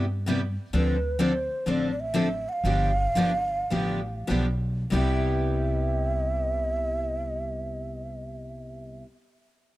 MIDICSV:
0, 0, Header, 1, 4, 480
1, 0, Start_track
1, 0, Key_signature, 0, "major"
1, 0, Tempo, 465839
1, 756, Time_signature, 4, 2, 24, 8
1, 2209, Tempo, 510204
1, 3169, Tempo, 549954
1, 3649, Tempo, 607287
1, 4609, Tempo, 655022
1, 8158, End_track
2, 0, Start_track
2, 0, Title_t, "Shakuhachi"
2, 0, Program_c, 0, 77
2, 783, Note_on_c, 0, 71, 85
2, 1259, Note_on_c, 0, 72, 81
2, 1274, Note_off_c, 0, 71, 0
2, 1752, Note_on_c, 0, 74, 72
2, 1768, Note_off_c, 0, 72, 0
2, 1956, Note_off_c, 0, 74, 0
2, 1971, Note_on_c, 0, 74, 65
2, 2061, Note_on_c, 0, 76, 97
2, 2076, Note_off_c, 0, 74, 0
2, 2533, Note_on_c, 0, 78, 103
2, 2547, Note_off_c, 0, 76, 0
2, 2567, Note_on_c, 0, 77, 112
2, 2576, Note_off_c, 0, 78, 0
2, 4119, Note_off_c, 0, 77, 0
2, 4624, Note_on_c, 0, 76, 88
2, 7621, Note_off_c, 0, 76, 0
2, 8158, End_track
3, 0, Start_track
3, 0, Title_t, "Steel-string acoustic guitar"
3, 0, Program_c, 1, 25
3, 271, Note_on_c, 1, 48, 70
3, 282, Note_on_c, 1, 59, 77
3, 283, Note_on_c, 1, 55, 70
3, 284, Note_on_c, 1, 64, 76
3, 286, Note_on_c, 1, 67, 81
3, 399, Note_off_c, 1, 48, 0
3, 405, Note_off_c, 1, 55, 0
3, 405, Note_off_c, 1, 59, 0
3, 406, Note_off_c, 1, 64, 0
3, 407, Note_off_c, 1, 67, 0
3, 753, Note_on_c, 1, 50, 65
3, 757, Note_on_c, 1, 53, 65
3, 757, Note_on_c, 1, 60, 66
3, 758, Note_on_c, 1, 62, 66
3, 771, Note_on_c, 1, 69, 69
3, 985, Note_off_c, 1, 50, 0
3, 987, Note_off_c, 1, 53, 0
3, 987, Note_off_c, 1, 60, 0
3, 987, Note_off_c, 1, 62, 0
3, 994, Note_off_c, 1, 69, 0
3, 1225, Note_on_c, 1, 50, 78
3, 1225, Note_on_c, 1, 53, 73
3, 1226, Note_on_c, 1, 60, 82
3, 1232, Note_on_c, 1, 62, 89
3, 1238, Note_on_c, 1, 69, 88
3, 1351, Note_off_c, 1, 50, 0
3, 1351, Note_off_c, 1, 53, 0
3, 1352, Note_off_c, 1, 60, 0
3, 1355, Note_off_c, 1, 62, 0
3, 1358, Note_off_c, 1, 69, 0
3, 1710, Note_on_c, 1, 50, 64
3, 1713, Note_on_c, 1, 53, 63
3, 1719, Note_on_c, 1, 60, 64
3, 1727, Note_on_c, 1, 62, 72
3, 1731, Note_on_c, 1, 69, 64
3, 1950, Note_off_c, 1, 50, 0
3, 1952, Note_off_c, 1, 53, 0
3, 1955, Note_off_c, 1, 60, 0
3, 1959, Note_off_c, 1, 62, 0
3, 1961, Note_off_c, 1, 69, 0
3, 2201, Note_on_c, 1, 50, 74
3, 2202, Note_on_c, 1, 53, 74
3, 2208, Note_on_c, 1, 60, 83
3, 2209, Note_on_c, 1, 62, 77
3, 2217, Note_on_c, 1, 69, 79
3, 2324, Note_off_c, 1, 50, 0
3, 2325, Note_off_c, 1, 53, 0
3, 2328, Note_off_c, 1, 60, 0
3, 2328, Note_off_c, 1, 62, 0
3, 2332, Note_off_c, 1, 69, 0
3, 2682, Note_on_c, 1, 50, 67
3, 2688, Note_on_c, 1, 53, 68
3, 2688, Note_on_c, 1, 59, 61
3, 2693, Note_on_c, 1, 62, 69
3, 2696, Note_on_c, 1, 67, 70
3, 2915, Note_off_c, 1, 50, 0
3, 2918, Note_off_c, 1, 53, 0
3, 2919, Note_off_c, 1, 59, 0
3, 2921, Note_off_c, 1, 62, 0
3, 2922, Note_off_c, 1, 67, 0
3, 3158, Note_on_c, 1, 50, 78
3, 3163, Note_on_c, 1, 59, 86
3, 3166, Note_on_c, 1, 53, 84
3, 3172, Note_on_c, 1, 67, 93
3, 3174, Note_on_c, 1, 62, 87
3, 3284, Note_off_c, 1, 50, 0
3, 3287, Note_off_c, 1, 59, 0
3, 3288, Note_off_c, 1, 53, 0
3, 3291, Note_off_c, 1, 67, 0
3, 3292, Note_off_c, 1, 62, 0
3, 3639, Note_on_c, 1, 53, 61
3, 3641, Note_on_c, 1, 50, 59
3, 3645, Note_on_c, 1, 59, 63
3, 3649, Note_on_c, 1, 62, 67
3, 3649, Note_on_c, 1, 67, 70
3, 3865, Note_off_c, 1, 53, 0
3, 3866, Note_off_c, 1, 50, 0
3, 3868, Note_off_c, 1, 59, 0
3, 3869, Note_off_c, 1, 62, 0
3, 3869, Note_off_c, 1, 67, 0
3, 4090, Note_on_c, 1, 53, 68
3, 4092, Note_on_c, 1, 59, 73
3, 4093, Note_on_c, 1, 50, 69
3, 4094, Note_on_c, 1, 62, 79
3, 4095, Note_on_c, 1, 67, 76
3, 4225, Note_off_c, 1, 53, 0
3, 4225, Note_off_c, 1, 59, 0
3, 4226, Note_off_c, 1, 50, 0
3, 4227, Note_off_c, 1, 62, 0
3, 4227, Note_off_c, 1, 67, 0
3, 4588, Note_on_c, 1, 48, 74
3, 4593, Note_on_c, 1, 55, 68
3, 4602, Note_on_c, 1, 59, 80
3, 4609, Note_on_c, 1, 64, 84
3, 4613, Note_on_c, 1, 67, 82
3, 7616, Note_off_c, 1, 48, 0
3, 7620, Note_off_c, 1, 55, 0
3, 7629, Note_off_c, 1, 59, 0
3, 7636, Note_off_c, 1, 64, 0
3, 7640, Note_off_c, 1, 67, 0
3, 8158, End_track
4, 0, Start_track
4, 0, Title_t, "Upright bass"
4, 0, Program_c, 2, 32
4, 0, Note_on_c, 2, 43, 79
4, 571, Note_off_c, 2, 43, 0
4, 755, Note_on_c, 2, 38, 80
4, 1521, Note_off_c, 2, 38, 0
4, 1714, Note_on_c, 2, 33, 69
4, 2494, Note_off_c, 2, 33, 0
4, 2672, Note_on_c, 2, 31, 88
4, 3067, Note_off_c, 2, 31, 0
4, 3156, Note_on_c, 2, 31, 70
4, 3570, Note_off_c, 2, 31, 0
4, 3648, Note_on_c, 2, 33, 70
4, 4041, Note_off_c, 2, 33, 0
4, 4108, Note_on_c, 2, 35, 78
4, 4532, Note_off_c, 2, 35, 0
4, 4601, Note_on_c, 2, 36, 84
4, 7599, Note_off_c, 2, 36, 0
4, 8158, End_track
0, 0, End_of_file